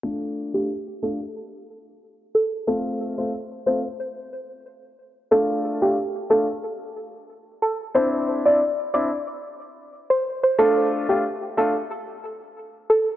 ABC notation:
X:1
M:4/4
L:1/16
Q:1/4=91
K:Dm
V:1 name="Synth pluck"
A z2 G z2 A z6 z A z | A z2 c z2 c z8 z | A z2 G z2 A z6 z A z | c z2 d z2 d z6 c z c |
A z2 G z2 A z6 z A z |]
V:2 name="Grand piano"
[A,DF]3 [A,DF] z2 [A,DF] z8 z | [A,CF]3 [A,CF] z2 [A,CF] z8 z | [A,DF]3 [A,DF] z2 [A,DF] z8 z | [CDE]3 [CDE] z2 [CDE] z8 z |
[A,DF]3 [A,DF] z2 [A,DF] z8 z |]